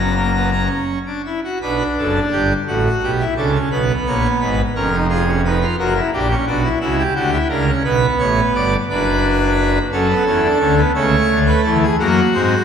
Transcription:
Already playing: F#1 F#2 A#5
0.00 B3
0.16 A#3
0.35 B3
0.53 C#4
1.06 D4
1.25 E4
1.44 F#4
1.61 B1 B2 D4 B4
1.98 F#1 F#2 A4
2.32 G1 G2 G4
2.67 A1 A2 F#4
3.03 B1 B2 G4
3.20 E4
3.36 C#2 C#3 D4 A4
3.55 C#4
3.71 B1 B2 B3 B4
4.07 A#1 A#2 C#5
4.40 G#1 G#2 B4
4.75 F1 F2 C#4 A#4
4.92 D#4
5.09 F4 G#4
5.27 C#4
5.45 D#4 B4
5.62 F4
5.79 F#1 F#2 F#4 A#4
5.96 E4
6.13 A#1 A#2 D4 G4
6.30 C#4
6.46 B1 B2 D4 F#4
6.63 E4
6.81 C#2 C#3 E4 F#4
6.99 G4
7.15 D2 D3 F#4 G4
7.32 E4
7.49 C#2 C#3 D4 A#4
7.67 C#4
7.84 B1 B2 B3 B4
8.19 A1 A2 C#5
8.54 G1 G2 D5
8.90 F#1 F#2 D4 B4
9.92 F#2 F#3 C#4 A4
10.09 B3
10.26 E2 E3 C#4
10.43 D4
10.59 D2 D3 C#4
10.77 B3
10.94 C#2 C#3 A3 C#5
11.30 D2 D3
11.47 B4
11.64 E2 E3 A4
11.82 G#4
11.99 F#2 F#3 A#3 F#4
12.33 G#2 G#3 C4

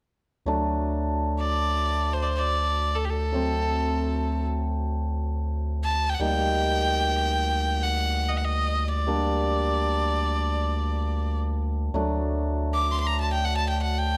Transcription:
0.46 D2 F#3 A3 D4
1.40 D5
2.13 C5
2.22 C5 D5
2.37 D5
2.95 A4
3.05 G4
3.10 A4
3.32 F#3 A3 C4
5.84 A5
6.10 G5
6.14 F#5
6.19 D2 G3 A#3 D#4 G5
7.82 F#5
8.29 D#5
8.37 F#5
8.45 D#5
8.88 D5
9.07 G3 A#3 D4
11.94 D2 F#3 A3 D4
12.74 D6
12.91 C6 D6
13.00 C6
13.07 A#5
13.21 A5
13.33 G5
13.45 F#5
13.57 A5
13.69 G5
13.82 F#5
13.98 G5

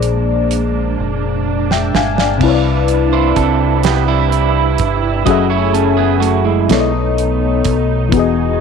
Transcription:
Already playing: A#1 A#2 G#3 A#3 D4 G#4 C5 D5
0.02 closed hi-hat
0.51 closed hi-hat
1.00 F1
1.71 E5 G5, snare
1.95 G1 F5 G#5, snare
2.18 D5 F5, snare
2.38 C2 C3 C4 E4 B4, kick, crash
2.43 E4 B4
2.48 C#5
2.55 D5
2.88 closed hi-hat
3.13 E4 C5
3.36 C2 C4 A4, kick, closed hi-hat
3.83 B3 G4, snare, closed hi-hat
4.08 G3 E4
4.32 closed hi-hat
4.78 G1, kick, closed hi-hat
5.26 F#1 F#3 A3 C#4 F#4 G#4 D#5 G#5, kick, closed hi-hat
5.30 A4 E5
5.50 E4 C#5
5.73 C#4 A4, closed hi-hat
5.97 B3 G#4
6.20 A3 F#4, closed hi-hat
6.45 G#3 E4
6.69 B1 B2 A3 B3 D#4 A4 C#5, snare, closed hi-hat
6.74 D5
6.80 D#5
7.18 closed hi-hat
7.64 B1, kick, closed hi-hat
8.09 E3 B3, kick, closed hi-hat
8.13 E1 E3 F#4 G#4
8.19 D#5

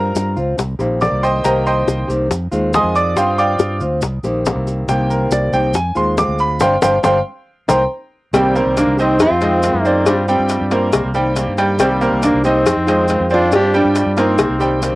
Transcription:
Already playing: G2 G3 C4 F4 A#4 A#5
0.15 G2, high bongo, maracas
0.36 C#2 C4 F4, maracas
0.58 C2, muted steel-string acoustic guitar stroke, high bongo, maracas
0.79 A#1 D#3 A#3 C4 G4, high bongo, maracas
1.01 D#3 A#3 C4 G4 D5 D6, high bongo, low bongo, maracas
1.12 C2
1.23 C5 D#5 G5 C6, high bongo, maracas
1.44 C2 C3 D#3 A#3 C4 G4 A#4 D#5 G5 A#5, high bongo, maracas
1.66 C5 D#5 G5 C6, maracas
1.87 C2, high bongo, maracas
2.08 C2 D#3 A#3 C4 G4, maracas
2.30 F2, muted steel-string acoustic guitar stroke, high bongo, maracas
2.51 D#2 D#3 G#3 C4 F4, maracas
2.73 G#3 C4 F4 D#5 G#5 C6 D#6, high bongo, low bongo, maracas
2.83 F2
2.95 D5 D6, maracas
3.16 G2 G3 C4 F4 C5 F5 G5 C6, high bongo, maracas
3.38 D5 F5 G5 D6, high bongo, maracas
3.59 G2, high bongo, maracas
3.81 D2 C4 F4, maracas
4.02 C2, muted steel-string acoustic guitar stroke, high bongo, maracas
4.23 A#1 D#3 A#3 C4 G4, high bongo, maracas
4.46 D#3 A#3 C4 G4, high bongo, low bongo, maracas
4.55 C2
4.67 high bongo, maracas
4.88 C2 C3 D#3 A#3 C4 G4 G5, high bongo, maracas
5.10 A#4, maracas
5.30 C2 D5, high bongo, maracas
5.52 C2 D#3 A#3 C4 G4 G5, maracas
5.74 F2 G#5, muted steel-string acoustic guitar stroke, high bongo, maracas
5.95 D#2 D#3 G#3 C4 F4 C6, maracas
6.17 G#3 C4 F4 D6, high bongo, low bongo, maracas
6.28 D2
6.39 B5, maracas
6.60 G1 G3 C4 D4 F5 G5 C6, low bongo, maracas
6.82 G1 G3 C4 D4 F5 G5 C6, low bongo, maracas
7.03 G1 G3 C4 D4 F5 G5 C6, low bongo, maracas
7.68 C2 A#3 C4 D#4 G5 A#5 C6, low bongo, maracas
8.33 C2 C3 D#3 G3 A#3 C4 G4 G5, cowbell, maracas
8.55 A#3 A#4 C5, maracas
8.65 C2
8.77 A#3 D4, cowbell, maracas
8.87 C2
8.97 D#3 A#3 C4 D#4 G4 C5 D#5, maracas
9.19 F2 C4 F4, muted steel-string acoustic guitar stroke, cowbell, maracas
9.30 F2
9.41 D#3 G#3 C4 F4 C5 D#5, cowbell, maracas
9.62 D#3 G#3 C4 F4, cowbell, maracas
9.74 F#2
9.80 A#3
9.85 C4 D#4 C5 D5, maracas
10.06 G2 G3 C4 D4 F4, cowbell, maracas
10.28 G3 C4 G4 G5, maracas
10.39 G2
10.49 cowbell, maracas
10.61 G2
10.70 A#3 C4 F4 A#4 C5, cowbell, maracas
10.92 C2, muted steel-string acoustic guitar stroke, cowbell, maracas
11.04 C2
11.14 D#3 G3 A#3 C4 G4 G5, maracas
11.36 D#3 A#3 C4 G4, cowbell, maracas
11.48 G2
11.58 G3 G4 G5, cowbell, maracas
11.78 C2 C3 D#3 G3 A#3 C4 G4 G5, cowbell, maracas
12.01 A#3 A#4 C5, maracas
12.12 C2
12.23 A#3 D4, cowbell, maracas
12.34 C2
12.44 D#3 A#3 C4 D#4 G4 C5 D#5, maracas
12.65 F2, muted steel-string acoustic guitar stroke, cowbell, maracas
12.76 F2
12.86 D#3 G#3 C4 F4 C5 D#5, cowbell, maracas
13.08 D#3 G#3 C4 F4, cowbell, maracas
13.20 F2
13.30 C4 D4 F4 C5 D5, maracas
13.51 G2 G3 C4 D4 F4 G4, cowbell, maracas
13.74 G3 D4 G4 G5, maracas
13.84 G2
13.95 cowbell, maracas
14.06 G2
14.17 A#3 C4 D#4 F4 A#4 C5, cowbell, maracas
14.38 C2, muted steel-string acoustic guitar stroke, cowbell, maracas
14.49 C2
14.59 D#3 G3 A#3 C4 G4 G5, maracas
14.81 D#3 A#3 C4 G4, cowbell, maracas

